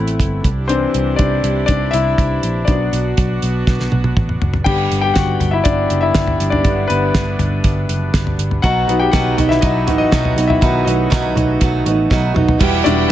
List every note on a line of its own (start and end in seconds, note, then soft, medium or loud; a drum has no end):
0.00 0.21 A1 medium
0.00 0.42 A3 medium
0.00 0.46 A3 soft
0.00 0.46 B3 medium
0.00 0.47 C4 soft
0.00 0.42 E4 medium
0.00 0.47 E4 soft
0.00 0.46 A4 medium
0.00 0.46 B4 medium
0.07 closed hi-hat soft
0.20 0.40 G1 medium
0.20 kick medium
0.20 closed hi-hat medium
0.44 0.85 C2 medium
0.44 2.66 C3 medium
0.44 4.63 D4 medium
0.44 2.66 E4 medium
0.44 2.66 G4 medium
0.44 kick medium
0.44 closed hi-hat medium
0.68 1.02 E3 soft
0.68 1.16 C4 medium
0.68 1.02 D4 medium
0.68 1.15 C5 medium
0.68 closed hi-hat medium
0.94 1.15 C2 medium
0.94 closed hi-hat medium
1.16 1.39 C2 medium
1.16 1.65 D4 medium
1.16 1.65 D5 medium
1.16 kick medium
1.16 closed hi-hat medium
1.43 1.64 C2 medium
1.43 closed hi-hat medium
1.66 1.89 C2 medium
1.66 1.92 D4 medium
1.66 1.90 D5 medium
1.66 kick medium
1.66 closed hi-hat medium
1.91 2.14 C2 medium
1.91 2.64 E4 medium
1.91 2.62 E5 medium
1.91 closed hi-hat medium
2.18 2.39 C2 medium
2.18 kick medium
2.18 closed hi-hat medium
2.43 2.64 A#1 medium
2.43 closed hi-hat medium
2.65 2.88 B1 medium
2.65 4.62 F#3 soft
2.65 4.62 B3 soft
2.65 4.65 B3 medium
2.65 4.13 D4 medium
2.65 4.65 F#4 medium
2.65 4.11 D5 medium
2.65 kick medium
2.65 closed hi-hat medium
2.93 3.13 B1 medium
2.93 closed hi-hat medium
3.17 3.38 B1 medium
3.17 kick medium
3.17 closed hi-hat medium
3.42 3.63 B1 medium
3.42 closed hi-hat medium
3.67 3.88 B1 medium
3.67 kick medium
3.67 snare soft
3.80 snare soft
3.92 4.13 B1 medium
3.92 high tom medium
4.04 high tom soft
4.17 4.37 A1 medium
4.17 kick medium
4.17 mid tom medium
4.29 mid tom medium
4.42 4.62 F#1 medium
4.42 floor tom medium
4.54 floor tom medium
4.64 4.87 G1 medium
4.64 5.37 D3 soft
4.64 5.37 G3 soft
4.64 8.60 G3 medium
4.64 8.59 B3 medium
4.64 5.37 B3 soft
4.64 8.60 D4 medium
4.64 5.01 G4 medium
4.64 5.00 G5 medium
4.64 kick medium
4.64 crash medium
4.91 5.12 G1 medium
4.91 closed hi-hat medium
5.01 5.15 G4 medium
5.01 5.15 G5 medium
5.14 5.36 G1 medium
5.14 5.51 F#4 medium
5.14 5.53 F#5 medium
5.14 kick medium
5.14 snare loud
5.14 closed hi-hat medium
5.40 5.61 G1 medium
5.40 closed hi-hat medium
5.40 floor tom medium
5.51 5.58 E4 medium
5.51 5.56 E5 medium
5.64 5.86 G1 medium
5.64 6.00 D4 medium
5.64 6.03 D5 medium
5.64 kick loud
5.64 closed hi-hat medium
5.90 6.11 F#1 medium
5.90 closed hi-hat medium
6.01 6.49 E4 medium
6.01 6.53 E5 medium
6.15 6.36 G1 medium
6.15 kick medium
6.15 snare loud
6.15 closed hi-hat medium
6.28 floor tom medium
6.40 6.60 G1 medium
6.40 closed hi-hat medium
6.50 6.87 D4 medium
6.50 6.90 D5 medium
6.50 floor tom medium
6.63 6.85 G1 medium
6.63 7.35 D3 soft
6.63 7.35 G3 soft
6.63 6.88 B3 medium
6.63 kick medium
6.63 closed hi-hat medium
6.88 7.10 G1 medium
6.88 8.35 B3 medium
6.88 8.34 B4 medium
6.88 closed hi-hat medium
7.14 7.35 G1 medium
7.14 kick medium
7.14 snare loud
7.14 closed hi-hat medium
7.39 7.60 G1 loud
7.39 closed hi-hat medium
7.39 floor tom medium
7.64 7.85 G1 medium
7.64 kick medium
7.64 closed hi-hat medium
7.89 8.09 F#1 medium
7.89 closed hi-hat medium
8.14 8.34 G1 medium
8.14 kick medium
8.14 snare medium
8.14 closed hi-hat medium
8.27 floor tom medium
8.38 8.59 G1 medium
8.38 closed hi-hat medium
8.51 floor tom medium
8.62 8.84 B1 medium
8.62 8.88 B2 medium
8.62 12.56 F#3 medium
8.62 8.88 F#3 medium
8.62 10.60 B3 medium
8.62 8.88 B3 medium
8.62 8.88 D#4 medium
8.62 12.56 F#4 medium
8.62 8.98 F#4 medium
8.62 8.86 F#4 medium
8.62 9.01 F#5 medium
8.62 kick medium
8.62 closed hi-hat medium
8.87 9.09 B1 medium
8.87 10.83 B2 medium
8.87 10.60 F#3 medium
8.87 10.61 B3 medium
8.87 9.13 B3 soft
8.87 9.13 D#4 soft
8.87 9.13 F#4 medium
8.87 closed hi-hat medium
8.99 9.06 G4 medium
8.99 9.04 G5 medium
9.12 9.34 B1 medium
9.12 9.38 B2 medium
9.12 9.38 F#3 medium
9.12 9.38 B3 medium
9.12 9.38 D#4 medium
9.12 9.48 F#4 medium
9.12 9.36 F#4 medium
9.12 9.51 F#5 medium
9.12 kick loud
9.12 snare loud
9.12 closed hi-hat medium
9.37 9.58 B1 loud
9.37 9.62 B3 soft
9.37 9.63 D#4 medium
9.37 9.62 F#4 medium
9.37 closed hi-hat medium
9.37 floor tom medium
9.49 9.56 E4 medium
9.49 9.54 E5 medium
9.49 snare soft
9.61 9.88 B1 medium
9.61 9.87 F#3 medium
9.61 9.88 B3 medium
9.61 9.97 D#4 medium
9.61 9.87 D#4 medium
9.61 9.85 F#4 medium
9.61 9.97 D#5 medium
9.61 kick medium
9.61 closed hi-hat medium
9.87 10.08 A1 medium
9.87 10.11 B3 soft
9.87 10.12 D#4 soft
9.87 10.12 F#4 medium
9.87 closed hi-hat medium
9.87 floor tom medium
9.98 10.46 D#4 medium
9.98 10.50 D#5 loud
10.11 10.33 B1 medium
10.11 10.37 B2 medium
10.11 10.37 F#3 medium
10.11 10.37 B3 medium
10.11 10.37 D#4 medium
10.11 10.35 F#4 medium
10.11 kick medium
10.11 snare loud
10.11 closed hi-hat medium
10.25 floor tom medium
10.36 10.58 B1 loud
10.36 10.61 B3 soft
10.36 10.62 D#4 soft
10.36 10.61 F#4 medium
10.36 closed hi-hat medium
10.47 10.84 E4 medium
10.47 10.87 E5 medium
10.47 floor tom medium
10.61 10.82 B1 medium
10.61 10.86 B2 medium
10.61 12.56 D#3 soft
10.61 12.56 F#3 soft
10.61 10.87 F#3 medium
10.61 12.59 A3 medium
10.61 10.87 B3 medium
10.61 12.57 B3 medium
10.61 10.86 D#4 medium
10.61 10.84 F#4 medium
10.61 kick medium
10.61 closed hi-hat medium
10.85 11.07 B1 medium
10.85 11.10 B3 soft
10.85 12.32 D#4 medium
10.85 11.11 D#4 soft
10.85 11.11 F#4 medium
10.85 12.30 D#5 medium
10.85 closed hi-hat medium
11.10 11.32 B1 medium
11.10 11.36 B2 medium
11.10 11.36 F#3 medium
11.10 11.36 B3 medium
11.10 11.36 D#4 medium
11.10 11.34 F#4 loud
11.10 kick medium
11.10 snare loud
11.10 closed hi-hat medium
11.35 11.57 B1 medium
11.35 11.60 B3 soft
11.35 11.61 D#4 soft
11.35 11.61 F#4 medium
11.35 closed hi-hat medium
11.35 floor tom medium
11.60 11.82 B1 medium
11.60 11.86 F#3 medium
11.60 11.86 B3 medium
11.60 11.86 D#4 medium
11.60 11.84 F#4 medium
11.60 kick loud
11.60 closed hi-hat medium
11.85 12.06 A1 medium
11.85 12.10 B3 soft
11.85 12.10 D#4 soft
11.85 12.10 F#4 soft
11.85 closed hi-hat medium
12.10 12.31 B1 medium
12.10 12.35 B2 medium
12.10 12.35 F#3 medium
12.10 12.36 B3 medium
12.10 12.35 D#4 medium
12.10 12.33 F#4 medium
12.10 kick medium
12.10 snare soft
12.34 12.56 B1 medium
12.34 12.59 B3 soft
12.34 12.60 D#4 medium
12.34 12.60 F#4 medium
12.34 mid tom medium
12.48 floor tom medium
12.59 12.81 E1 loud
12.59 12.85 E2 medium
12.59 12.85 B2 medium
12.59 13.12 E3 medium
12.59 12.85 G3 medium
12.59 12.85 B3 medium
12.59 13.12 E4 medium
12.59 12.84 E4 medium
12.59 12.83 F#4 medium
12.59 13.12 G4 medium
12.59 13.12 B4 medium
12.59 13.12 G5 medium
12.59 kick loud
12.59 crash medium
12.84 13.06 E1 medium
12.84 13.12 G3 medium
12.84 13.09 G3 soft
12.84 13.09 B3 medium
12.84 13.09 D4 medium
12.84 13.09 E4 medium
12.84 13.10 E4 medium
12.84 13.10 F#4 medium
12.84 13.10 D5 medium
12.84 closed hi-hat medium
13.09 13.12 E5 medium